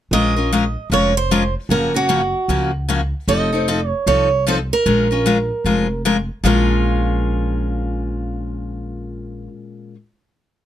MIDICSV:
0, 0, Header, 1, 4, 480
1, 0, Start_track
1, 0, Key_signature, -5, "minor"
1, 0, Tempo, 394997
1, 147, Time_signature, 4, 2, 24, 8
1, 12947, End_track
2, 0, Start_track
2, 0, Title_t, "Steel-string acoustic guitar"
2, 0, Program_c, 0, 25
2, 158, Note_on_c, 0, 75, 84
2, 1066, Note_off_c, 0, 75, 0
2, 1136, Note_on_c, 0, 73, 85
2, 1399, Note_off_c, 0, 73, 0
2, 1424, Note_on_c, 0, 72, 84
2, 1862, Note_off_c, 0, 72, 0
2, 2082, Note_on_c, 0, 70, 79
2, 2352, Note_off_c, 0, 70, 0
2, 2387, Note_on_c, 0, 66, 70
2, 3287, Note_off_c, 0, 66, 0
2, 3993, Note_on_c, 0, 75, 85
2, 4710, Note_off_c, 0, 75, 0
2, 4710, Note_on_c, 0, 73, 85
2, 4948, Note_off_c, 0, 73, 0
2, 4953, Note_on_c, 0, 73, 86
2, 5396, Note_off_c, 0, 73, 0
2, 5449, Note_on_c, 0, 72, 79
2, 5526, Note_off_c, 0, 72, 0
2, 5748, Note_on_c, 0, 70, 74
2, 7307, Note_off_c, 0, 70, 0
2, 7843, Note_on_c, 0, 65, 68
2, 11525, Note_off_c, 0, 65, 0
2, 12947, End_track
3, 0, Start_track
3, 0, Title_t, "Steel-string acoustic guitar"
3, 0, Program_c, 1, 25
3, 154, Note_on_c, 1, 53, 61
3, 158, Note_on_c, 1, 56, 51
3, 162, Note_on_c, 1, 61, 65
3, 163, Note_on_c, 1, 65, 64
3, 166, Note_on_c, 1, 70, 64
3, 404, Note_off_c, 1, 53, 0
3, 406, Note_off_c, 1, 56, 0
3, 409, Note_off_c, 1, 61, 0
3, 409, Note_off_c, 1, 65, 0
3, 410, Note_off_c, 1, 70, 0
3, 441, Note_on_c, 1, 70, 51
3, 452, Note_on_c, 1, 65, 43
3, 463, Note_on_c, 1, 61, 43
3, 619, Note_off_c, 1, 70, 0
3, 625, Note_off_c, 1, 65, 0
3, 630, Note_off_c, 1, 61, 0
3, 637, Note_on_c, 1, 53, 76
3, 638, Note_on_c, 1, 56, 68
3, 643, Note_on_c, 1, 61, 73
3, 645, Note_on_c, 1, 65, 83
3, 651, Note_on_c, 1, 70, 90
3, 767, Note_off_c, 1, 53, 0
3, 767, Note_off_c, 1, 56, 0
3, 770, Note_off_c, 1, 61, 0
3, 771, Note_off_c, 1, 65, 0
3, 774, Note_off_c, 1, 70, 0
3, 1112, Note_on_c, 1, 53, 62
3, 1112, Note_on_c, 1, 56, 64
3, 1119, Note_on_c, 1, 61, 65
3, 1123, Note_on_c, 1, 65, 68
3, 1127, Note_on_c, 1, 70, 64
3, 1364, Note_off_c, 1, 53, 0
3, 1364, Note_off_c, 1, 56, 0
3, 1368, Note_off_c, 1, 61, 0
3, 1370, Note_off_c, 1, 65, 0
3, 1372, Note_off_c, 1, 70, 0
3, 1595, Note_on_c, 1, 53, 82
3, 1598, Note_on_c, 1, 56, 86
3, 1599, Note_on_c, 1, 61, 90
3, 1604, Note_on_c, 1, 65, 84
3, 1605, Note_on_c, 1, 70, 86
3, 1726, Note_off_c, 1, 53, 0
3, 1728, Note_off_c, 1, 56, 0
3, 1728, Note_off_c, 1, 61, 0
3, 1731, Note_off_c, 1, 65, 0
3, 1732, Note_off_c, 1, 70, 0
3, 2069, Note_on_c, 1, 49, 63
3, 2077, Note_on_c, 1, 53, 56
3, 2080, Note_on_c, 1, 58, 67
3, 2080, Note_on_c, 1, 61, 66
3, 2087, Note_on_c, 1, 66, 73
3, 2323, Note_off_c, 1, 49, 0
3, 2327, Note_off_c, 1, 53, 0
3, 2328, Note_off_c, 1, 58, 0
3, 2328, Note_off_c, 1, 61, 0
3, 2332, Note_off_c, 1, 66, 0
3, 2361, Note_on_c, 1, 66, 48
3, 2373, Note_on_c, 1, 61, 47
3, 2382, Note_on_c, 1, 58, 46
3, 2528, Note_off_c, 1, 58, 0
3, 2529, Note_off_c, 1, 61, 0
3, 2534, Note_off_c, 1, 66, 0
3, 2537, Note_on_c, 1, 49, 82
3, 2540, Note_on_c, 1, 53, 83
3, 2543, Note_on_c, 1, 58, 78
3, 2544, Note_on_c, 1, 61, 83
3, 2549, Note_on_c, 1, 66, 83
3, 2678, Note_off_c, 1, 49, 0
3, 2679, Note_off_c, 1, 53, 0
3, 2680, Note_off_c, 1, 58, 0
3, 2681, Note_off_c, 1, 61, 0
3, 2684, Note_off_c, 1, 66, 0
3, 3025, Note_on_c, 1, 49, 63
3, 3028, Note_on_c, 1, 53, 63
3, 3035, Note_on_c, 1, 58, 68
3, 3037, Note_on_c, 1, 66, 66
3, 3038, Note_on_c, 1, 61, 63
3, 3280, Note_off_c, 1, 49, 0
3, 3282, Note_off_c, 1, 53, 0
3, 3285, Note_off_c, 1, 58, 0
3, 3287, Note_off_c, 1, 61, 0
3, 3287, Note_off_c, 1, 66, 0
3, 3506, Note_on_c, 1, 49, 85
3, 3513, Note_on_c, 1, 53, 74
3, 3518, Note_on_c, 1, 58, 78
3, 3519, Note_on_c, 1, 61, 89
3, 3525, Note_on_c, 1, 66, 84
3, 3642, Note_off_c, 1, 49, 0
3, 3645, Note_off_c, 1, 53, 0
3, 3648, Note_off_c, 1, 58, 0
3, 3648, Note_off_c, 1, 61, 0
3, 3651, Note_off_c, 1, 66, 0
3, 3986, Note_on_c, 1, 53, 57
3, 3993, Note_on_c, 1, 60, 60
3, 3996, Note_on_c, 1, 63, 71
3, 4001, Note_on_c, 1, 69, 62
3, 4241, Note_off_c, 1, 53, 0
3, 4244, Note_off_c, 1, 60, 0
3, 4245, Note_off_c, 1, 63, 0
3, 4248, Note_off_c, 1, 69, 0
3, 4283, Note_on_c, 1, 69, 53
3, 4295, Note_on_c, 1, 63, 44
3, 4310, Note_on_c, 1, 60, 40
3, 4460, Note_off_c, 1, 69, 0
3, 4461, Note_off_c, 1, 60, 0
3, 4466, Note_off_c, 1, 63, 0
3, 4470, Note_on_c, 1, 53, 76
3, 4476, Note_on_c, 1, 60, 84
3, 4483, Note_on_c, 1, 63, 80
3, 4485, Note_on_c, 1, 69, 87
3, 4603, Note_off_c, 1, 53, 0
3, 4606, Note_off_c, 1, 60, 0
3, 4609, Note_off_c, 1, 63, 0
3, 4610, Note_off_c, 1, 69, 0
3, 4945, Note_on_c, 1, 53, 61
3, 4950, Note_on_c, 1, 60, 68
3, 4957, Note_on_c, 1, 63, 69
3, 4959, Note_on_c, 1, 69, 69
3, 5199, Note_off_c, 1, 53, 0
3, 5202, Note_off_c, 1, 60, 0
3, 5205, Note_off_c, 1, 63, 0
3, 5206, Note_off_c, 1, 69, 0
3, 5427, Note_on_c, 1, 53, 76
3, 5432, Note_on_c, 1, 60, 84
3, 5439, Note_on_c, 1, 63, 88
3, 5444, Note_on_c, 1, 69, 90
3, 5560, Note_off_c, 1, 53, 0
3, 5563, Note_off_c, 1, 60, 0
3, 5566, Note_off_c, 1, 63, 0
3, 5569, Note_off_c, 1, 69, 0
3, 5904, Note_on_c, 1, 53, 68
3, 5908, Note_on_c, 1, 56, 65
3, 5911, Note_on_c, 1, 61, 66
3, 5918, Note_on_c, 1, 65, 60
3, 5919, Note_on_c, 1, 70, 69
3, 6158, Note_off_c, 1, 53, 0
3, 6159, Note_off_c, 1, 56, 0
3, 6161, Note_off_c, 1, 61, 0
3, 6164, Note_off_c, 1, 65, 0
3, 6165, Note_off_c, 1, 70, 0
3, 6206, Note_on_c, 1, 70, 49
3, 6218, Note_on_c, 1, 65, 46
3, 6226, Note_on_c, 1, 61, 45
3, 6380, Note_off_c, 1, 70, 0
3, 6383, Note_off_c, 1, 61, 0
3, 6386, Note_off_c, 1, 65, 0
3, 6388, Note_on_c, 1, 53, 83
3, 6391, Note_on_c, 1, 56, 82
3, 6398, Note_on_c, 1, 61, 75
3, 6401, Note_on_c, 1, 65, 75
3, 6402, Note_on_c, 1, 70, 82
3, 6520, Note_off_c, 1, 53, 0
3, 6521, Note_off_c, 1, 56, 0
3, 6525, Note_off_c, 1, 61, 0
3, 6526, Note_off_c, 1, 65, 0
3, 6527, Note_off_c, 1, 70, 0
3, 6872, Note_on_c, 1, 53, 64
3, 6878, Note_on_c, 1, 56, 67
3, 6879, Note_on_c, 1, 61, 63
3, 6882, Note_on_c, 1, 65, 65
3, 6885, Note_on_c, 1, 70, 66
3, 7121, Note_off_c, 1, 53, 0
3, 7124, Note_off_c, 1, 56, 0
3, 7124, Note_off_c, 1, 61, 0
3, 7125, Note_off_c, 1, 65, 0
3, 7127, Note_off_c, 1, 70, 0
3, 7353, Note_on_c, 1, 53, 85
3, 7357, Note_on_c, 1, 56, 86
3, 7360, Note_on_c, 1, 61, 81
3, 7362, Note_on_c, 1, 65, 82
3, 7367, Note_on_c, 1, 70, 87
3, 7482, Note_off_c, 1, 53, 0
3, 7484, Note_off_c, 1, 56, 0
3, 7485, Note_off_c, 1, 61, 0
3, 7486, Note_off_c, 1, 65, 0
3, 7489, Note_off_c, 1, 70, 0
3, 7821, Note_on_c, 1, 46, 82
3, 7832, Note_on_c, 1, 53, 71
3, 7836, Note_on_c, 1, 56, 79
3, 7846, Note_on_c, 1, 61, 85
3, 7849, Note_on_c, 1, 65, 86
3, 7857, Note_on_c, 1, 70, 86
3, 12074, Note_off_c, 1, 46, 0
3, 12085, Note_off_c, 1, 53, 0
3, 12089, Note_off_c, 1, 56, 0
3, 12100, Note_off_c, 1, 61, 0
3, 12102, Note_off_c, 1, 65, 0
3, 12110, Note_off_c, 1, 70, 0
3, 12947, End_track
4, 0, Start_track
4, 0, Title_t, "Upright bass"
4, 0, Program_c, 2, 32
4, 135, Note_on_c, 2, 34, 78
4, 909, Note_off_c, 2, 34, 0
4, 1091, Note_on_c, 2, 29, 74
4, 1867, Note_off_c, 2, 29, 0
4, 2054, Note_on_c, 2, 30, 76
4, 2828, Note_off_c, 2, 30, 0
4, 3018, Note_on_c, 2, 37, 72
4, 3790, Note_off_c, 2, 37, 0
4, 3981, Note_on_c, 2, 29, 82
4, 4751, Note_off_c, 2, 29, 0
4, 4940, Note_on_c, 2, 36, 74
4, 5709, Note_off_c, 2, 36, 0
4, 5904, Note_on_c, 2, 34, 88
4, 6671, Note_off_c, 2, 34, 0
4, 6860, Note_on_c, 2, 29, 73
4, 7628, Note_off_c, 2, 29, 0
4, 7821, Note_on_c, 2, 34, 82
4, 11504, Note_off_c, 2, 34, 0
4, 12947, End_track
0, 0, End_of_file